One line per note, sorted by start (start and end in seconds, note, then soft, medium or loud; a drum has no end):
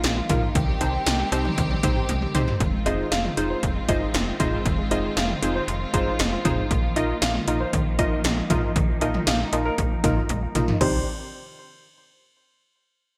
0.00 0.22 A#1 loud
0.00 2.56 D#3 medium
0.00 0.53 F3 medium
0.00 0.53 A#3 medium
0.00 0.51 F4 medium
0.00 0.13 D#5 medium
0.00 0.29 F5 loud
0.00 closed hi-hat medium
0.04 snare loud
0.17 0.26 F4 medium
0.29 0.48 A#1 loud
0.29 0.51 A#3 medium
0.29 0.51 D#4 medium
0.29 0.51 F4 medium
0.29 0.51 A#4 medium
0.29 0.41 F5 loud
0.29 kick loud
0.29 closed hi-hat medium
0.29 mid tom loud
0.42 0.52 F3 medium
0.55 0.73 C2 loud
0.55 0.65 D#3 loud
0.55 2.58 G3 medium
0.55 2.58 C4 medium
0.55 2.58 G4 medium
0.55 2.05 G5 loud
0.55 kick loud
0.55 closed hi-hat medium
0.68 0.78 G3 medium
0.81 0.99 C2 loud
0.81 1.02 C4 medium
0.81 0.90 C4 medium
0.81 1.02 D#4 medium
0.81 1.02 G4 medium
0.81 1.02 C5 medium
0.81 closed hi-hat medium
0.81 cowbell medium
0.94 1.03 G4 medium
1.06 1.24 C2 loud
1.06 1.16 D#5 loud
1.06 snare loud
1.06 closed hi-hat medium
1.19 1.29 G4 medium
1.32 1.50 C2 loud
1.32 1.53 C4 medium
1.32 1.42 C4 medium
1.32 1.53 D#4 medium
1.32 1.53 G4 medium
1.32 1.53 C5 loud
1.32 closed hi-hat medium
1.32 cowbell medium
1.45 1.54 G3 medium
1.45 mid tom loud
1.58 1.76 C2 loud
1.58 1.67 D#3 medium
1.58 kick medium
1.58 closed hi-hat medium
1.71 1.80 G3 medium
1.71 mid tom medium
1.83 2.01 A#1 medium
1.83 1.93 C4 medium
1.83 2.05 C4 medium
1.83 2.05 D#4 medium
1.83 2.05 G4 medium
1.83 2.05 C5 loud
1.83 kick loud
1.83 closed hi-hat medium
1.83 mid tom loud
1.96 2.06 G4 medium
2.09 2.27 C2 loud
2.09 2.19 D#5 medium
2.09 closed hi-hat medium
2.09 high tom medium
2.22 2.31 G4 medium
2.22 mid tom medium
2.35 2.53 C2 loud
2.35 2.56 C4 medium
2.35 2.56 D#4 medium
2.35 2.56 G4 medium
2.35 2.56 C5 loud
2.35 closed hi-hat medium
2.35 mid tom medium
2.48 2.57 G3 medium
2.48 floor tom medium
2.60 2.78 F1 loud
2.60 2.70 D#3 loud
2.60 6.67 D#3 medium
2.60 6.67 G#3 medium
2.60 6.67 C4 medium
2.60 8.72 F4 medium
2.60 kick loud
2.60 closed hi-hat medium
2.73 2.83 G#3 medium
2.86 3.04 F1 loud
2.86 2.95 C4 medium
2.86 3.07 D#4 medium
2.86 3.07 F4 medium
2.86 3.07 G#4 medium
2.86 3.07 C5 loud
2.86 2.94 D#5 medium
2.86 closed hi-hat medium
3.12 3.30 F1 loud
3.12 3.21 D#5 medium
3.12 3.19 F5 medium
3.12 snare loud
3.12 closed hi-hat medium
3.24 3.34 F4 medium
3.24 mid tom medium
3.37 3.55 F1 medium
3.37 3.47 C4 medium
3.37 3.59 D#4 medium
3.37 3.59 F4 medium
3.37 3.59 G#4 medium
3.37 3.59 C5 loud
3.37 closed hi-hat medium
3.50 3.58 C5 medium
3.63 3.81 F1 loud
3.63 3.72 D#3 medium
3.63 kick medium
3.63 closed hi-hat medium
3.76 3.85 G#3 medium
3.89 4.07 G1 medium
3.89 3.98 C4 medium
3.89 4.10 D#4 medium
3.89 4.10 F4 medium
3.89 4.10 G#4 medium
3.89 4.10 C5 loud
3.89 4.04 D#5 medium
3.89 kick medium
3.89 closed hi-hat medium
4.01 4.11 F4 medium
4.14 4.32 F1 loud
4.14 4.24 D#5 medium
4.14 snare loud
4.14 closed hi-hat medium
4.27 4.36 F4 medium
4.40 4.58 F1 medium
4.40 4.49 C4 medium
4.40 4.61 D#4 medium
4.40 4.61 F4 medium
4.40 4.61 G#4 medium
4.40 4.61 C5 loud
4.40 4.48 D#5 medium
4.40 kick medium
4.40 closed hi-hat medium
4.40 mid tom loud
4.53 4.62 G#3 medium
4.65 4.83 F1 loud
4.65 4.75 D#3 medium
4.65 kick loud
4.65 closed hi-hat medium
4.78 4.88 G#3 medium
4.91 5.09 F1 medium
4.91 5.01 C4 medium
4.91 5.12 D#4 medium
4.91 5.12 F4 medium
4.91 5.12 G#4 medium
4.91 5.12 C5 loud
4.91 4.99 D#5 medium
4.91 closed hi-hat medium
5.17 5.35 F1 loud
5.17 5.26 D#5 medium
5.17 5.25 F5 medium
5.17 snare loud
5.17 closed hi-hat medium
5.29 5.39 F4 medium
5.29 mid tom medium
5.42 5.60 F1 medium
5.42 5.52 C4 medium
5.42 5.64 D#4 medium
5.42 5.64 F4 medium
5.42 5.64 G#4 medium
5.42 5.64 C5 loud
5.42 closed hi-hat medium
5.55 5.63 C5 medium
5.68 5.86 F1 loud
5.68 5.78 D#3 medium
5.68 closed hi-hat medium
5.81 5.90 G#3 medium
5.94 6.12 G1 loud
5.94 6.03 C4 medium
5.94 6.15 D#4 medium
5.94 6.15 F4 medium
5.94 6.15 G#4 medium
5.94 6.09 C5 medium
5.94 6.15 C5 loud
5.94 kick medium
5.94 closed hi-hat medium
6.07 6.16 F4 medium
6.19 6.37 F1 loud
6.19 6.29 D#5 loud
6.19 snare loud
6.19 closed hi-hat medium
6.32 6.42 F4 medium
6.45 6.63 F1 loud
6.45 6.54 C4 medium
6.45 6.66 D#4 medium
6.45 6.66 F4 medium
6.45 6.66 G#4 medium
6.45 6.66 C5 loud
6.45 kick loud
6.45 closed hi-hat medium
6.45 mid tom loud
6.58 6.67 G#3 medium
6.71 6.89 A#1 loud
6.71 6.80 D#3 medium
6.71 10.77 D#3 medium
6.71 10.77 F3 medium
6.71 10.77 A#3 medium
6.71 kick loud
6.71 closed hi-hat medium
6.83 6.93 F3 medium
6.96 7.14 A#1 loud
6.96 7.06 A#3 medium
6.96 7.18 D#4 medium
6.96 7.18 F4 medium
6.96 7.18 A#4 medium
6.96 7.04 D#5 medium
6.96 7.18 D#5 loud
6.96 closed hi-hat medium
7.22 7.40 A#1 loud
7.22 7.31 D#5 medium
7.22 7.30 F5 medium
7.22 snare loud
7.22 closed hi-hat medium
7.35 7.44 F4 medium
7.35 mid tom medium
7.48 7.65 A#1 loud
7.48 7.57 A#3 medium
7.48 7.69 D#4 medium
7.48 7.69 F4 medium
7.48 7.69 A#4 medium
7.48 7.69 D#5 loud
7.48 closed hi-hat medium
7.60 7.68 C5 medium
7.73 8.00 A#1 loud
7.73 7.83 D#3 medium
7.73 kick medium
7.73 closed hi-hat medium
7.86 7.95 F3 medium
7.99 8.17 G#1 medium
7.99 8.08 A#3 medium
7.99 8.20 D#4 medium
7.99 8.20 F4 medium
7.99 8.20 A#4 medium
7.99 8.14 D#5 medium
7.99 8.20 D#5 loud
7.99 kick medium
7.99 closed hi-hat medium
8.12 8.21 F4 medium
8.24 8.42 A#1 medium
8.24 8.34 D#5 medium
8.24 snare loud
8.24 closed hi-hat medium
8.37 8.47 F4 medium
8.50 8.68 A#1 loud
8.50 8.60 A#3 medium
8.50 8.71 D#4 medium
8.50 8.71 F4 medium
8.50 8.71 A#4 medium
8.50 8.58 D#5 medium
8.50 8.71 D#5 loud
8.50 kick loud
8.50 closed hi-hat medium
8.50 mid tom loud
8.63 8.72 F3 medium
8.76 8.94 A#1 loud
8.76 8.85 D#3 loud
8.76 10.79 D#4 medium
8.76 kick loud
8.76 closed hi-hat medium
8.89 8.98 F3 medium
9.01 9.19 A#1 loud
9.01 9.11 A#3 medium
9.01 9.23 D#4 medium
9.01 9.23 F4 medium
9.01 9.23 A#4 medium
9.01 9.09 D#5 medium
9.01 9.23 D#5 loud
9.01 closed hi-hat medium
9.01 cowbell medium
9.14 mid tom loud
9.27 9.45 A#1 loud
9.27 9.36 D#5 medium
9.27 9.35 F5 medium
9.27 snare loud
9.27 closed hi-hat medium
9.40 9.49 F4 medium
9.53 9.71 A#1 loud
9.53 9.62 A#3 medium
9.53 9.74 D#4 medium
9.53 9.74 F4 medium
9.53 9.74 A#4 medium
9.53 9.74 D#5 loud
9.53 closed hi-hat medium
9.53 cowbell medium
9.65 9.73 A#4 medium
9.78 9.96 A#1 loud
9.78 9.88 D#3 medium
9.78 kick medium
9.78 closed hi-hat medium
9.91 10.01 F3 medium
10.04 10.22 G#1 medium
10.04 10.13 A#3 medium
10.04 10.25 D#4 medium
10.04 10.25 F4 medium
10.04 10.19 A#4 medium
10.04 10.25 A#4 medium
10.04 10.25 D#5 loud
10.04 kick loud
10.04 closed hi-hat medium
10.04 mid tom loud
10.17 10.26 F4 medium
10.29 10.47 A#1 loud
10.29 10.39 D#5 loud
10.29 closed hi-hat medium
10.29 high tom medium
10.43 10.52 F4 medium
10.55 10.73 A#1 loud
10.55 10.65 A#3 medium
10.55 10.76 D#4 medium
10.55 10.76 F4 medium
10.55 10.76 A#4 medium
10.55 10.76 D#5 loud
10.55 closed hi-hat medium
10.55 mid tom medium
10.68 10.78 F3 medium
10.68 floor tom medium
10.81 11.05 C2 loud
10.81 11.05 C3 medium
10.81 11.05 D#3 medium
10.81 11.05 C4 medium
10.81 11.05 D4 medium
10.81 11.05 D#4 medium
10.81 11.05 G4 medium
10.81 11.05 C5 medium
10.81 11.05 D5 medium
10.81 kick loud
10.81 crash medium